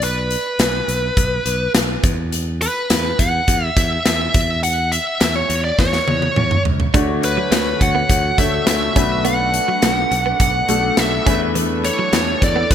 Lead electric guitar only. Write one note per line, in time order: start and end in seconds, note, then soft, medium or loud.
0.03 1.72 B4 medium
2.62 3.21 B4 medium
3.19 3.65 F#5 loud
3.65 3.77 E5 loud
3.77 4.05 E5 medium
4.06 4.60 E5 medium
4.64 4.93 F#5 loud
4.92 5.20 E5 medium
5.21 5.36 E5 medium
5.36 5.64 C#5 medium
5.64 5.79 D5 medium
5.80 6.62 C#5 medium
7.24 7.83 B4 medium
7.82 8.41 F#5 loud
8.38 8.66 E5 medium
8.68 9.27 E5 medium
9.25 10.40 F#5 loud
10.41 10.95 F#5 medium
10.99 11.39 E5 medium
11.85 12.43 C#5 loud
12.44 12.72 D5 loud